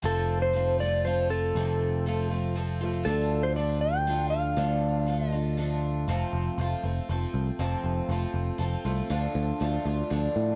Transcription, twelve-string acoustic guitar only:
X:1
M:3/4
L:1/8
Q:1/4=119
K:F
V:1 name="Twelve-string acoustic guitar"
[F,,C,F,A,CF]2 [F,A,CF] [F,A,CF] [F,A,CF] [F,A,CF] | [F,,C,F,A,CF]2 [F,A,CF] [F,A,CF] [F,A,CF] [F,A,CF] | [D,F,A,DF]2 [F,A,DF]2 [F,A,DF]2 | [D,F,A,DF]2 [F,A,DF] [A,DF] [F,A,DF]2 |
[F,,C,F,A,CF]2 [F,A,CF] [F,A,CF] [F,A,CF]2 | [F,,C,F,A,CF]2 [F,A,CF]2 [F,A,CF] [F,A,CF] | [D,F,A,DF]2 [F,A,DF] [A,DF] [F,A,DF]2 |]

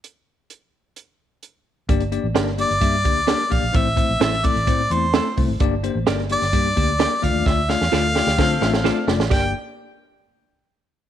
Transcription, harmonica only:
X:1
M:4/4
L:1/8
Q:1/4=130
K:Gdor
V:1 name="Harmonica"
z8 | z3 d4 f | e3 d2 c2 z | z3 d4 f |
e f6 z | g z6 z |]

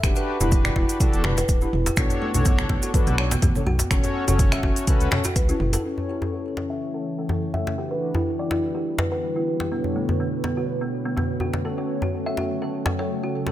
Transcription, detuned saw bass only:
X:1
M:4/4
L:1/16
Q:"Swing 16ths" 1/4=124
K:Edor
V:1 name="Detuned saw bass" clef=bass
E,,, z2 E,,,2 z E,,, z2 E,,,2 z D,,, z E,,, z | B,,, z2 B,,,2 z B,,, z2 B,,,2 z A,,, z B,,, z | F,,, z2 F,,,2 z F,,, z2 C,, z2 C,, z F,,, z | z16 |
z16 | z16 | z16 |]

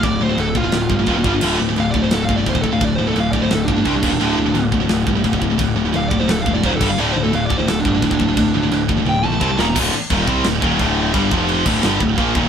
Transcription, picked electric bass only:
X:1
M:4/4
L:1/8
Q:1/4=173
K:Dm
V:1 name="Picked electric bass" clef=bass
D,,, D,,, D,,,2 D,,, G,,, _E,,, G,,, | D,,, D,,, D,,,2 D,,, G,,, D,,, D,,, | D,,, D,,, D,,,2 D,,, G,,, C,, _E,,, | D,,, D,,, D,,,2 D,,, G,,, D,,, D,,, |
D,,, D,,, D,,,2 D,,, E,,, _E,,, G,,, | D,,, D,,, D,,,2 D,,, G,,, D,,, D,,, | D,,, D,,, D,,,2 D,,, B,,, C,, _E,,, | D,,, z _E,,, C,, D,,, E,,, D,,,2 |
G,,, F,,,2 D,,, G,,, D,,, B,,, _E,,, |]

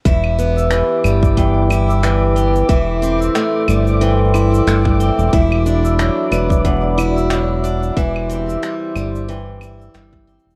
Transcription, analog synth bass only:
X:1
M:4/4
L:1/16
Q:"Swing 16ths" 1/4=91
K:Em
V:1 name="Analog synth bass" clef=bass
E,,,4- E,,, z G,,,8- G,,,2 | E,,,4 z2 G,,,6 G,,,3 E,,, | E,,,4- E,,, z E,,,8- E,,,2 | E,,,4 z2 G,,,6 G,,,3 E,,, |]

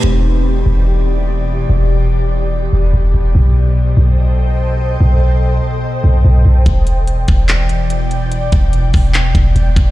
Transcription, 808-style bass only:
X:1
M:4/4
L:1/8
Q:1/4=145
K:Em
V:1 name="808-style bass" clef=bass
E,,,3 E,,,4- E,,, | E,,,4- E,,, E,,, E,,, E,,, | B,,,3 B,,,4- B,,, | B,,,3 z2 B,,, B,,, B,,, |
E,,,3 E,,,4- E,,,- | E,,, E,,,2 E,,,2 E,,, E,,, E,,, |]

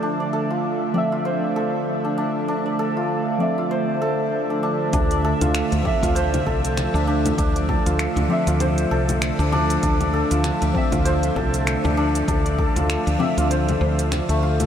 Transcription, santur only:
X:1
M:4/4
L:1/16
Q:"Swing 16ths" 1/4=98
K:Dm
V:1 name="Santur"
D d A F3 d F c z A z2 D D z | D d A F3 d F c z A z2 D D z | D d A F3 d F c z A z2 D D z | D d A F3 d F c z A z2 D D z |
D d A F3 d F c z A z2 D D z | D d A F3 d F c z c z2 A, F z |]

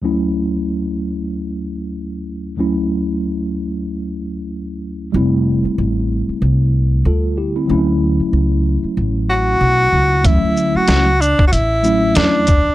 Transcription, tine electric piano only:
X:1
M:4/4
L:1/16
Q:"Swing 16ths" 1/4=94
K:D
V:1 name="Tine electric piano"
z16 | z16 | z12 [=FA]2 [EG] [=CE]- | [=CE] z12 z3 |
z16 |]
V:2 name="Tine electric piano"
[D,,F,A,CE]16 | [D,,F,A,CE]16 | [G,A,=CE]16 | [F,A,CE]16 |
[E,F,A,CE]6 z4 [F,A,CE]4 z2 |]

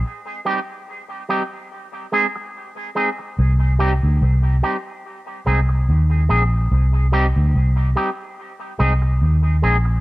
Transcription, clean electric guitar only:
X:1
M:4/4
L:1/8
Q:"Swing 16ths" 1/4=72
K:Cm
V:1 name="Clean electric guitar"
z [G,CEG] z [G,CEG] z [A,CEA] z [A,CEA] | z [G,CEG] z [G,CEG] z [A,CEA] z [A,CEA] | z [G,CEG] z [G,CEG] z [A,CEA] z [A,CEA] |]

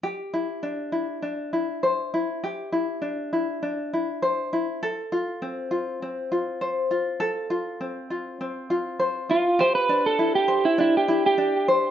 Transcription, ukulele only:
X:1
M:4/4
L:1/8
Q:1/4=100
K:C
V:1 name="Ukulele"
G E D E D E c E | G E D E D E c E | A F C F C F c F | A F C F C F c F |
G D E c D E D c |]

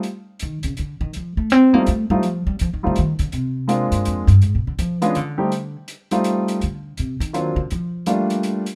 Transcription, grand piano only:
X:1
M:3/4
L:1/8
Q:"Swing" 1/4=164
K:Fmix
V:1 name="Grand piano"
z6 | z3 [G,A,CEF] z [G,A,CEF] | z3 [G,A,CEF] z2 | z2 [_A,B,CDF]3 z |
z3 [^G,=B,_D=DF] z [=G,A,CEG] | z3 [G,A,CEF]3 | z4 [^F,^A,CD^E] z | z2 [G,A,B,DF]3 z |]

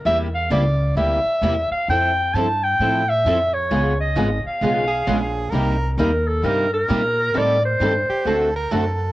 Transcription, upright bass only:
X:1
M:4/4
L:1/8
Q:"Swing" 1/4=132
K:Cdor
V:1 name="Upright bass" clef=bass
=E,,2 ^C,,2 D,, z E,, z | F,,2 G,,2 A,,2 F,,2 | ^C,,2 ^G,,, z =B,,,2 _B,,,2 | C,,2 E,,2 G,,2 B,,2 |
A,,2 G,, z D,,2 ^F,,2 |]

